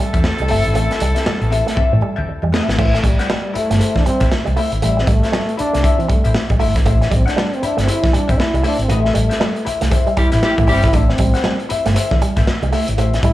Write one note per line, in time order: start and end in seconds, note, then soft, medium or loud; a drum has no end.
0.00 0.12 G3 medium
0.00 2.50 A3 medium
0.00 2.50 C4 medium
0.00 2.49 E4 medium
0.00 2.50 A4 loud
0.13 0.22 E2 loud
0.13 0.29 C4 soft
0.13 0.28 G4 medium
0.13 0.28 A4 medium
0.13 0.28 E5 medium
0.13 kick medium
0.13 closed hi-hat medium
0.24 muted clean electric guitar stroke soft
0.24 snare medium
0.38 0.47 C2 medium
0.38 0.49 G3 medium
0.38 muted hollow-body jazz guitar stroke soft
0.38 closed hi-hat soft
0.48 0.62 G1 medium
0.48 0.63 A3 medium
0.48 0.70 C4 medium
0.48 0.64 G4 medium
0.48 0.63 A4 medium
0.48 0.62 E5 medium
0.48 open hi-hat medium
0.63 0.76 G#1 medium
0.63 muted hollow-body jazz guitar stroke soft
0.63 closed hi-hat medium
0.73 0.87 A1 loud
0.73 0.88 A3 medium
0.73 0.95 C4 medium
0.73 0.96 G4 medium
0.73 0.96 A4 medium
0.73 0.96 E5 medium
0.73 closed hi-hat medium
0.91 muted clean electric guitar stroke soft
0.91 snare soft
0.91 closed hi-hat soft
0.99 1.13 C2 medium
0.99 1.14 G3 medium
0.99 muted hollow-body jazz guitar stroke soft
0.99 closed hi-hat medium
1.15 1.24 C4 medium
1.15 1.25 G4 medium
1.15 1.25 A4 medium
1.15 1.26 E5 medium
1.15 snare soft
1.15 closed hi-hat soft
1.25 1.39 G3 medium
1.25 muted hollow-body jazz guitar stroke soft
1.25 muted fingered electric bass stroke soft
1.25 snare loud
1.41 1.61 A1 medium
1.41 closed hi-hat soft
1.50 1.69 C4 medium
1.50 1.65 G4 medium
1.50 1.64 A4 medium
1.50 1.63 E5 medium
1.50 muted clean electric guitar stroke soft
1.50 closed hi-hat medium
1.64 1.75 A3 medium
1.64 muted hollow-body jazz guitar stroke soft
1.64 closed hi-hat medium
1.68 snare soft
1.75 1.97 C4 medium
1.75 1.98 G4 medium
1.75 1.98 A4 loud
1.75 1.98 E5 loud
1.75 muted clean electric guitar stroke soft
1.75 muted fingered electric bass stroke soft
1.75 kick medium
1.93 2.00 A2 medium
1.93 2.01 E3 medium
2.01 2.15 G3 medium
2.01 muted hollow-body jazz guitar stroke soft
2.16 2.26 D2 loud
2.16 2.32 C4 soft
2.16 2.32 G4 medium
2.16 2.31 A4 medium
2.16 2.31 E5 medium
2.28 muted fingered electric bass stroke soft
2.28 muted clean electric guitar stroke soft
2.42 2.51 E2 medium
2.42 2.51 G3 medium
2.42 muted hollow-body jazz guitar stroke soft
2.52 2.66 A3 medium
2.52 2.74 C4 medium
2.52 2.68 G4 medium
2.52 2.68 A4 medium
2.52 2.67 E5 medium
2.52 snare loud
2.68 2.76 G#1 medium
2.68 muted hollow-body jazz guitar stroke soft
2.68 snare medium
2.78 2.99 A1 loud
2.78 2.93 E3 medium
2.78 2.91 A3 medium
2.78 3.00 E4 medium
2.78 3.00 G4 medium
2.78 3.00 C5 medium
2.78 3.01 E5 medium
2.78 kick loud
2.78 crash loud
2.94 3.08 A3 medium
2.94 muted clean electric guitar stroke soft
2.94 snare soft
2.94 closed hi-hat soft
3.03 3.16 A1 medium
3.03 3.17 G3 medium
3.03 3.56 G3 medium
3.03 muted hollow-body jazz guitar stroke soft
3.03 kick loud
3.03 closed hi-hat medium
3.19 3.27 E4 medium
3.19 3.27 G4 medium
3.19 3.28 C5 medium
3.19 3.29 F#5 medium
3.19 snare soft
3.19 closed hi-hat soft
3.28 3.42 G3 medium
3.28 muted hollow-body jazz guitar stroke soft
3.28 snare loud
3.54 3.99 A3 medium
3.54 3.73 E4 medium
3.54 3.70 G4 medium
3.54 3.69 C5 medium
3.54 3.69 E5 medium
3.54 muted clean electric guitar stroke soft
3.54 muted fingered electric bass stroke soft
3.54 closed hi-hat medium
3.70 3.78 G1 loud
3.70 3.79 A3 medium
3.70 muted hollow-body jazz guitar stroke soft
3.70 snare soft
3.70 closed hi-hat medium
3.79 4.01 E4 medium
3.79 4.01 G4 medium
3.79 4.02 C5 loud
3.79 4.02 E5 loud
3.79 muted clean electric guitar stroke soft
3.79 closed hi-hat medium
3.95 4.04 E3 medium
3.95 4.06 D4 medium
3.95 kick medium
3.95 snare soft
3.95 closed hi-hat soft
4.05 4.19 G3 medium
4.05 4.30 C4 loud
4.05 muted hollow-body jazz guitar stroke soft
4.05 muted fingered electric bass stroke soft
4.05 closed hi-hat medium
4.20 4.29 A1 medium
4.20 4.36 E4 medium
4.20 4.36 G4 medium
4.20 4.36 C5 medium
4.20 4.35 E5 medium
4.20 kick medium
4.20 snare soft
4.20 closed hi-hat soft
4.31 muted clean electric guitar stroke soft
4.31 muted fingered electric bass stroke soft
4.31 snare medium
4.45 4.55 C2 medium
4.45 4.54 G3 medium
4.45 muted hollow-body jazz guitar stroke medium
4.45 closed hi-hat soft
4.56 4.69 A3 medium
4.56 4.78 E4 medium
4.56 4.72 G4 medium
4.56 4.71 C5 medium
4.56 4.70 E5 loud
4.56 open hi-hat medium
4.72 4.80 G#1 medium
4.72 muted hollow-body jazz guitar stroke soft
4.72 closed hi-hat soft
4.82 5.02 A1 loud
4.82 5.02 G3 medium
4.82 4.95 A3 medium
4.82 5.04 E4 medium
4.82 5.04 G4 medium
4.82 5.04 C5 medium
4.82 5.05 E5 loud
4.82 closed hi-hat medium
4.97 5.11 C4 medium
4.97 muted clean electric guitar stroke soft
4.97 snare soft
5.07 5.20 A1 loud
5.07 5.20 G3 medium
5.07 5.58 A3 medium
5.07 muted hollow-body jazz guitar stroke soft
5.07 kick loud
5.07 closed hi-hat medium
5.23 5.31 E4 medium
5.23 5.32 G4 medium
5.23 5.33 C5 medium
5.23 5.33 E5 medium
5.23 snare soft
5.23 closed hi-hat soft
5.32 5.46 G3 medium
5.32 snare loud
5.49 closed hi-hat soft
5.57 6.02 D4 loud
5.57 5.76 E4 medium
5.57 5.74 G4 medium
5.57 5.73 C5 medium
5.57 5.73 E5 medium
5.57 muted clean electric guitar stroke soft
5.57 muted fingered electric bass stroke soft
5.57 closed hi-hat medium
5.73 5.82 C2 medium
5.73 5.82 A3 medium
5.73 muted hollow-body jazz guitar stroke soft
5.73 snare soft
5.73 closed hi-hat medium
5.84 6.06 E4 medium
5.84 6.06 G4 medium
5.84 6.06 C5 medium
5.84 6.06 E5 loud
5.84 muted clean electric guitar stroke soft
5.84 kick loud
5.84 closed hi-hat medium
5.99 6.08 E3 medium
5.99 6.09 C4 medium
5.99 closed hi-hat soft
6.08 6.22 G3 medium
6.08 6.33 A3 medium
6.08 muted fingered electric bass stroke soft
6.08 muted hollow-body jazz guitar stroke soft
6.08 kick medium
6.08 closed hi-hat medium
6.24 6.33 A1 loud
6.24 6.40 E4 medium
6.24 6.40 G4 medium
6.24 6.40 C5 medium
6.24 6.39 E5 medium
6.24 closed hi-hat soft
6.34 muted clean electric guitar stroke medium
6.34 snare medium
6.49 6.62 A1 medium
6.49 6.59 G3 medium
6.49 muted hollow-body jazz guitar stroke soft
6.49 kick medium
6.49 closed hi-hat soft
6.59 6.76 G1 medium
6.59 6.73 A3 medium
6.59 6.82 E4 medium
6.59 6.75 G4 medium
6.59 6.75 C5 loud
6.59 6.74 E5 loud
6.59 open hi-hat medium
6.75 6.84 G#1 medium
6.75 muted hollow-body jazz guitar stroke soft
6.75 kick medium
6.75 snare soft
6.75 closed hi-hat medium
6.85 7.06 A1 loud
6.85 6.99 A3 medium
6.85 7.07 E4 medium
6.85 7.08 G4 medium
6.85 7.08 C5 medium
6.85 7.08 E5 medium
6.85 kick loud
6.85 closed hi-hat medium
7.01 muted clean electric guitar stroke soft
7.01 snare soft
7.01 closed hi-hat soft
7.11 7.24 A1 loud
7.11 7.24 G3 medium
7.11 7.29 C4 medium
7.11 kick loud
7.11 closed hi-hat medium
7.26 7.57 D4 medium
7.26 7.37 E4 soft
7.26 7.37 G4 medium
7.26 7.37 C5 medium
7.26 7.39 F#5 medium
7.26 snare soft
7.26 closed hi-hat soft
7.37 7.50 G3 medium
7.37 muted hollow-body jazz guitar stroke soft
7.37 snare loud
7.53 7.66 C4 loud
7.53 closed hi-hat soft
7.62 7.79 D4 medium
7.62 7.81 E4 medium
7.62 7.78 G4 medium
7.62 7.77 C5 medium
7.62 7.77 E5 medium
7.62 muted clean electric guitar stroke soft
7.62 muted fingered electric bass stroke medium
7.62 closed hi-hat medium
7.77 7.86 G1 loud
7.77 7.86 A3 medium
7.77 muted hollow-body jazz guitar stroke soft
7.77 snare soft
7.77 closed hi-hat medium
7.81 7.92 C4 medium
7.87 8.09 E4 medium
7.87 8.15 E4 medium
7.87 8.09 G4 medium
7.87 8.10 C5 loud
7.87 8.10 E5 medium
7.87 muted clean electric guitar stroke soft
7.87 closed hi-hat medium
8.03 8.12 E3 medium
8.03 kick loud
8.03 snare soft
8.03 closed hi-hat soft
8.13 8.26 G3 medium
8.13 8.32 D4 medium
8.13 muted hollow-body jazz guitar stroke soft
8.13 muted fingered electric bass stroke soft
8.13 closed hi-hat medium
8.28 8.37 A1 medium
8.28 8.40 C4 loud
8.28 8.44 E4 medium
8.28 8.44 G4 medium
8.28 8.43 C5 medium
8.28 8.43 E5 medium
8.28 kick medium
8.28 closed hi-hat medium
8.38 8.65 E4 loud
8.38 muted clean electric guitar stroke soft
8.38 muted fingered electric bass stroke soft
8.38 snare medium
8.54 8.62 C2 medium
8.54 8.63 G3 medium
8.54 muted hollow-body jazz guitar stroke soft
8.54 closed hi-hat soft
8.63 8.77 A3 medium
8.63 8.80 D4 loud
8.63 8.86 E4 loud
8.63 8.79 G4 loud
8.63 8.78 C5 loud
8.63 8.78 E5 loud
8.63 open hi-hat medium
8.79 8.87 G#1 medium
8.79 8.90 C4 medium
8.79 muted hollow-body jazz guitar stroke medium
8.79 closed hi-hat soft
8.89 9.10 A1 loud
8.89 9.02 A3 medium
8.89 9.64 A3 medium
8.89 9.11 E4 medium
8.89 9.11 G4 medium
8.89 9.12 C5 medium
8.89 9.12 E5 medium
8.89 closed hi-hat medium
9.04 muted clean electric guitar stroke medium
9.04 snare soft
9.14 9.28 A1 medium
9.14 9.28 G3 medium
9.14 muted hollow-body jazz guitar stroke soft
9.14 closed hi-hat medium
9.29 9.38 E4 medium
9.29 9.39 G4 medium
9.29 9.39 C5 medium
9.29 9.40 E5 medium
9.29 snare soft
9.29 closed hi-hat soft
9.39 9.53 G3 medium
9.39 muted hollow-body jazz guitar stroke soft
9.39 snare loud
9.56 closed hi-hat soft
9.65 9.84 E4 medium
9.65 9.81 G4 medium
9.65 9.80 C5 medium
9.65 9.80 E5 medium
9.65 muted clean electric guitar stroke soft
9.65 muted fingered electric bass stroke soft
9.65 closed hi-hat medium
9.81 9.90 C2 loud
9.81 9.90 A3 medium
9.81 muted hollow-body jazz guitar stroke soft
9.81 snare soft
9.81 closed hi-hat medium
9.90 10.13 E4 medium
9.90 10.13 G4 medium
9.90 10.13 C5 medium
9.90 10.14 E5 loud
9.90 muted clean electric guitar stroke soft
9.90 kick loud
9.90 closed hi-hat medium
10.07 10.16 G3 medium
10.07 closed hi-hat soft
10.17 10.30 G3 medium
10.17 10.27 G3 medium
10.17 10.27 C4 medium
10.17 10.27 E4 medium
10.17 10.32 E4 loud
10.17 10.27 G4 loud
10.17 muted hollow-body jazz guitar stroke soft
10.17 muted fingered electric bass stroke soft
10.17 kick medium
10.17 closed hi-hat medium
10.32 10.41 A1 medium
10.32 10.72 E4 loud
10.32 10.48 E4 medium
10.32 10.48 G4 medium
10.32 10.47 C5 medium
10.32 10.47 E5 medium
10.32 snare soft
10.32 closed hi-hat soft
10.43 10.54 G3 loud
10.43 10.54 C4 medium
10.43 10.54 E4 medium
10.43 10.54 G4 loud
10.43 muted clean electric guitar stroke soft
10.43 snare loud
10.58 10.71 A1 medium
10.58 10.67 A3 medium
10.58 muted hollow-body jazz guitar stroke soft
10.58 kick medium
10.58 closed hi-hat soft
10.67 10.84 G1 loud
10.67 10.81 G3 medium
10.67 10.86 G3 loud
10.67 10.86 C4 loud
10.67 10.86 C4 medium
10.67 10.89 E4 medium
10.67 10.86 E4 loud
10.67 10.83 G4 medium
10.67 10.86 G4 loud
10.67 10.83 C5 loud
10.67 10.82 E5 loud
10.67 open hi-hat medium
10.83 10.92 G#1 medium
10.83 10.98 E4 loud
10.83 muted hollow-body jazz guitar stroke soft
10.83 kick medium
10.83 snare soft
10.83 closed hi-hat medium
10.93 11.14 A1 loud
10.93 11.06 A3 medium
10.93 11.12 D4 medium
10.93 11.15 E4 medium
10.93 11.15 G4 medium
10.93 11.15 C5 medium
10.93 11.16 E5 medium
10.93 kick loud
10.93 closed hi-hat medium
11.09 11.61 C4 medium
11.09 muted clean electric guitar stroke soft
11.09 snare soft
11.18 11.31 A1 loud
11.18 11.32 G3 medium
11.18 muted hollow-body jazz guitar stroke soft
11.18 kick medium
11.18 closed hi-hat medium
11.34 11.44 E4 medium
11.34 11.44 G4 medium
11.34 11.45 C5 medium
11.34 11.46 F#5 medium
11.34 snare soft
11.34 closed hi-hat soft
11.44 11.58 G3 medium
11.44 muted hollow-body jazz guitar stroke soft
11.44 snare loud
11.59 closed hi-hat soft
11.69 11.88 E4 medium
11.69 11.86 G4 medium
11.69 11.85 C5 medium
11.69 11.85 E5 medium
11.69 muted clean electric guitar stroke soft
11.69 muted fingered electric bass stroke medium
11.69 closed hi-hat medium
11.86 11.94 G1 loud
11.86 11.94 A3 medium
11.86 muted hollow-body jazz guitar stroke soft
11.86 snare soft
11.86 closed hi-hat medium
11.94 12.17 E4 medium
11.94 12.17 G4 medium
11.94 12.17 C5 loud
11.94 12.18 E5 loud
11.94 muted clean electric guitar stroke soft
11.94 closed hi-hat medium
12.11 12.20 E3 medium
12.11 kick medium
12.11 snare soft
12.22 12.34 G3 medium
12.22 muted hollow-body jazz guitar stroke soft
12.22 muted fingered electric bass stroke soft
12.22 closed hi-hat medium
12.36 12.45 A1 medium
12.36 12.52 E4 medium
12.36 12.52 G4 medium
12.36 12.52 C5 medium
12.36 12.51 E5 medium
12.36 kick medium
12.36 snare soft
12.36 closed hi-hat soft
12.47 muted clean electric guitar stroke soft
12.47 snare medium
12.62 12.70 C2 medium
12.62 12.71 G3 medium
12.62 muted hollow-body jazz guitar stroke soft
12.62 closed hi-hat soft
12.72 12.85 A3 medium
12.72 12.94 E4 loud
12.72 12.88 G4 medium
12.72 12.87 C5 medium
12.72 12.86 E5 medium
12.72 open hi-hat medium
12.88 12.96 G#1 medium
12.88 muted hollow-body jazz guitar stroke medium
12.88 closed hi-hat medium
12.97 13.18 A1 loud
12.97 13.11 A3 medium
12.97 13.19 E4 medium
12.97 13.20 G4 medium
12.97 13.20 C5 medium
12.97 13.20 E5 medium
12.97 closed hi-hat medium
13.13 muted clean electric guitar stroke soft
13.13 snare soft
13.13 closed hi-hat soft
13.23 13.33 A1 loud
13.23 13.33 G3 medium
13.23 13.33 E4 loud
13.23 kick loud
13.23 closed hi-hat medium